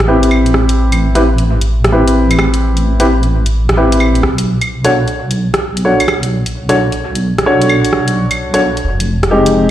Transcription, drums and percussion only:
0.23 closed hi-hat
0.31 claves
0.46 closed hi-hat
0.54 cross-stick
0.69 closed hi-hat
0.92 closed hi-hat, claves
1.15 closed hi-hat
1.38 closed hi-hat
1.61 closed hi-hat
1.84 cross-stick, closed hi-hat
2.08 closed hi-hat
2.31 closed hi-hat, claves
2.39 cross-stick, claves
2.54 closed hi-hat
2.77 closed hi-hat
3.00 closed hi-hat
3.23 closed hi-hat
3.46 closed hi-hat
3.69 cross-stick, closed hi-hat
3.92 closed hi-hat
4.00 claves
4.15 closed hi-hat
4.23 cross-stick
4.38 closed hi-hat
4.61 closed hi-hat, claves
4.84 closed hi-hat
5.08 closed hi-hat
5.31 closed hi-hat
5.54 cross-stick, closed hi-hat
5.77 closed hi-hat
6.00 closed hi-hat, claves
6.08 cross-stick, claves
6.23 closed hi-hat
6.46 closed hi-hat
6.69 closed hi-hat
6.92 closed hi-hat
7.15 closed hi-hat
7.38 cross-stick, closed hi-hat
7.62 closed hi-hat
7.69 claves
7.85 closed hi-hat
7.93 cross-stick
8.08 closed hi-hat
8.31 closed hi-hat, claves
8.54 closed hi-hat
8.77 closed hi-hat
9.00 closed hi-hat
9.23 cross-stick, closed hi-hat
9.46 closed hi-hat

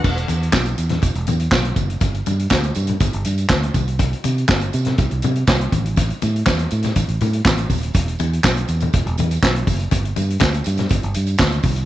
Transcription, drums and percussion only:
0.04 kick, crash, tambourine, muted conga
0.17 closed hi-hat
0.28 closed hi-hat, tambourine, muted conga
0.43 closed hi-hat
0.52 kick, snare, clap, tambourine, high conga
0.66 closed hi-hat, tambourine
0.78 closed hi-hat, tambourine
0.89 snare, closed hi-hat, low conga
1.02 kick, closed hi-hat, tambourine, muted conga
1.15 closed hi-hat
1.27 closed hi-hat, tambourine, muted conga, low conga
1.40 closed hi-hat
1.52 kick, snare, clap, tambourine, high conga
1.65 closed hi-hat
1.76 kick, closed hi-hat, tambourine, high conga
1.90 closed hi-hat
2.00 kick, closed hi-hat, tambourine, muted conga
2.14 closed hi-hat
2.26 closed hi-hat, tambourine, muted conga
2.39 closed hi-hat
2.50 kick, snare, clap, tambourine, high conga
2.63 closed hi-hat, tambourine
2.75 closed hi-hat, tambourine
2.87 closed hi-hat, tambourine, low conga
3.00 kick, closed hi-hat, tambourine, muted conga
3.13 closed hi-hat
3.24 closed hi-hat, tambourine, muted conga
3.38 closed hi-hat, tambourine
3.49 kick, snare, clap, tambourine, high conga
3.63 closed hi-hat
3.74 kick, closed hi-hat, tambourine, high conga
3.88 closed hi-hat
3.99 kick, closed hi-hat, tambourine, muted conga
4.13 closed hi-hat
4.24 closed hi-hat, tambourine, muted conga
4.38 closed hi-hat
4.48 kick, snare, clap, tambourine, high conga
4.61 closed hi-hat, tambourine
4.73 closed hi-hat, tambourine
4.85 snare, closed hi-hat, low conga
4.98 kick, closed hi-hat, tambourine, muted conga
5.11 closed hi-hat
5.22 closed hi-hat, tambourine, low conga
5.36 closed hi-hat
5.47 kick, snare, clap, tambourine, high conga
5.61 closed hi-hat
5.72 kick, closed hi-hat, tambourine, high conga
5.86 closed hi-hat
5.96 kick, closed hi-hat, tambourine, muted conga
6.10 closed hi-hat
6.22 closed hi-hat, tambourine, muted conga
6.36 closed hi-hat
6.46 kick, snare, clap, tambourine, high conga
6.59 closed hi-hat
6.70 closed hi-hat, tambourine
6.83 snare, closed hi-hat, tambourine, low conga
6.96 kick, closed hi-hat, tambourine, muted conga
7.08 closed hi-hat
7.21 closed hi-hat, tambourine, low conga
7.33 closed hi-hat
7.45 kick, snare, clap, tambourine, high conga
7.58 closed hi-hat, tambourine
7.70 kick, open hi-hat, tambourine, high conga
7.83 closed hi-hat
7.94 kick, closed hi-hat, tambourine, muted conga
8.08 closed hi-hat
8.19 closed hi-hat, tambourine, muted conga
8.33 closed hi-hat
8.43 kick, snare, clap, tambourine, high conga
8.57 closed hi-hat
8.68 closed hi-hat, tambourine
8.80 closed hi-hat, tambourine, low conga
8.93 kick, closed hi-hat, tambourine, muted conga
9.07 closed hi-hat
9.18 closed hi-hat, tambourine, muted conga, low conga
9.31 closed hi-hat, tambourine
9.42 kick, snare, clap, tambourine, high conga
9.56 closed hi-hat
9.67 kick, open hi-hat, tambourine, high conga
9.80 closed hi-hat
9.91 kick, closed hi-hat, tambourine, muted conga
10.05 closed hi-hat
10.16 closed hi-hat, tambourine, muted conga
10.30 closed hi-hat
10.40 kick, snare, clap, tambourine, high conga
10.53 closed hi-hat, tambourine
10.64 closed hi-hat, tambourine
10.77 snare, closed hi-hat, tambourine, low conga
10.89 kick, closed hi-hat, tambourine, muted conga
11.03 closed hi-hat
11.14 closed hi-hat, tambourine
11.27 closed hi-hat, tambourine
11.38 kick, snare, clap, tambourine, high conga
11.50 closed hi-hat, tambourine
11.63 kick, open hi-hat, tambourine, high conga
11.76 closed hi-hat

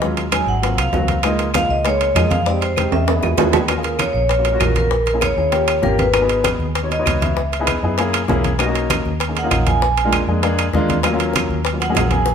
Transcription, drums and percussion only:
0.02 high bongo, high conga
0.17 high bongo, high conga, high timbale
0.32 high bongo, high conga, high timbale, claves
0.63 high bongo, high conga, high timbale
0.78 high bongo, high conga, high timbale, claves
0.93 high bongo, low bongo, high conga, low timbale
1.08 high bongo, high conga, high timbale
1.23 high bongo, high conga, high timbale, claves
1.39 high bongo, high conga, high timbale
1.54 high bongo, high conga, high timbale, claves
1.70 high conga
1.85 high bongo, high conga, high timbale
2.00 high bongo, high conga, high timbale
2.16 high bongo, low bongo, high conga, high timbale, low timbale, claves
2.31 high bongo, high conga, high timbale
2.46 high bongo, high conga
2.62 high bongo, high conga, high timbale
2.76 high bongo, high conga, high timbale, claves
2.92 high timbale
3.08 high bongo, high conga, high timbale
3.23 high bongo, high conga, low timbale, claves
3.38 high bongo, high conga, low timbale
3.53 low bongo, high conga, low timbale
3.68 high bongo, high conga, high timbale, claves
3.83 high bongo, high conga, high timbale
3.99 high bongo, high conga, high timbale, claves
4.15 high conga
4.29 high bongo, high conga, high timbale
4.45 high bongo, high conga, high timbale
4.60 high bongo, low bongo, high conga, high timbale, low timbale, claves
4.75 high bongo, high conga, high timbale
4.91 high bongo
5.06 high bongo, high conga, high timbale
5.21 high bongo, high conga, high timbale, claves
5.52 high bongo, high conga, high timbale
5.68 high bongo, high conga, high timbale, claves
5.83 high bongo, low bongo, high conga
5.98 high bongo, high conga, high timbale
6.14 high bongo, high conga, high timbale, claves
6.29 high bongo, high conga, high timbale
6.44 high bongo, high conga, high timbale, claves
6.60 high conga
6.75 high bongo, high conga, high timbale
6.91 high bongo, high conga, high timbale
7.06 high bongo, low bongo, high conga, high timbale, claves
7.21 high bongo, high conga, high timbale
7.37 high bongo, high conga
7.52 high bongo, high conga, high timbale
7.67 high bongo, high conga, high timbale, claves
7.98 high bongo, high conga, high timbale
8.13 high bongo, high conga, high timbale, claves
8.28 high bongo, low bongo, high conga, low timbale
8.44 high bongo, high conga, high timbale
8.59 high bongo, high conga, high timbale, claves
8.75 high bongo, high conga, high timbale
8.90 high bongo, high conga, high timbale, claves
9.06 high conga
9.20 high bongo, high conga, high timbale
9.35 high bongo, high conga, high timbale
9.51 high bongo, low bongo, high conga, high timbale, claves
9.67 high bongo, high conga, high timbale
9.82 high bongo, high conga
9.97 high bongo, high conga, high timbale
10.13 high bongo, high conga, high timbale, claves
10.43 high bongo, high conga, high timbale
10.58 high bongo, high conga, high timbale, claves
10.73 high bongo, low bongo, high conga
10.88 high bongo, high conga, high timbale
11.03 high bongo, high timbale, claves
11.19 high bongo, high conga, high timbale
11.33 high bongo, high conga, high timbale, claves
11.50 high conga
11.65 high bongo, high conga, high timbale
11.80 high bongo, high conga, high timbale
11.95 high bongo, low bongo, high conga, high timbale, low timbale, claves
12.11 high bongo, high conga, high timbale
12.26 high bongo, high conga

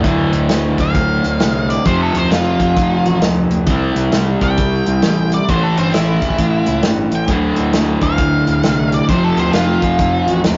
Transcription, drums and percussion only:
0.04 kick, closed hi-hat
0.33 closed hi-hat
0.49 snare, closed hi-hat
0.78 kick, closed hi-hat
0.95 kick, closed hi-hat
1.24 closed hi-hat
1.40 snare, closed hi-hat
1.70 closed hi-hat
1.85 kick, closed hi-hat
2.15 closed hi-hat
2.31 snare, closed hi-hat
2.60 kick, closed hi-hat
2.77 kick, closed hi-hat
3.06 closed hi-hat
3.22 snare, closed hi-hat
3.51 closed hi-hat
3.67 kick, closed hi-hat
3.96 closed hi-hat
4.12 snare, closed hi-hat
4.41 kick, closed hi-hat
4.58 kick, closed hi-hat
4.86 closed hi-hat
5.02 snare, closed hi-hat
5.32 closed hi-hat
5.49 kick, closed hi-hat
5.77 closed hi-hat
5.94 snare, closed hi-hat
6.22 kick, closed hi-hat
6.30 kick
6.38 kick, closed hi-hat
6.66 closed hi-hat
6.83 snare, closed hi-hat
7.12 closed hi-hat
7.28 kick, closed hi-hat
7.56 closed hi-hat
7.73 snare, closed hi-hat
8.01 kick, closed hi-hat
8.18 kick, closed hi-hat
8.47 closed hi-hat
8.63 snare, closed hi-hat
8.92 closed hi-hat
9.09 kick, closed hi-hat
9.37 closed hi-hat
9.53 snare, closed hi-hat
9.82 kick, closed hi-hat
9.99 kick, closed hi-hat
10.28 closed hi-hat
10.44 snare, closed hi-hat

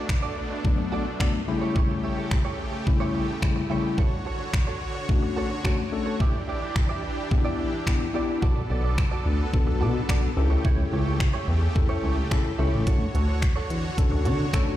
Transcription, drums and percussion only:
0.09 finger snap, kick
0.65 kick
1.20 finger snap, kick
1.76 kick
2.31 finger snap, kick
2.87 kick
3.42 finger snap, kick
3.98 kick
4.54 finger snap, kick
5.09 kick
5.65 finger snap, kick
6.20 kick
6.76 finger snap, kick
7.31 kick
7.87 finger snap, kick
8.42 kick
8.98 finger snap, kick
9.54 kick
10.09 finger snap, kick
10.65 kick
11.20 finger snap, kick
11.76 kick
12.31 finger snap, kick
12.87 kick, closed hi-hat
13.15 closed hi-hat
13.42 finger snap, kick, closed hi-hat
13.70 closed hi-hat
13.98 kick, closed hi-hat
14.25 closed hi-hat
14.53 finger snap, kick, closed hi-hat

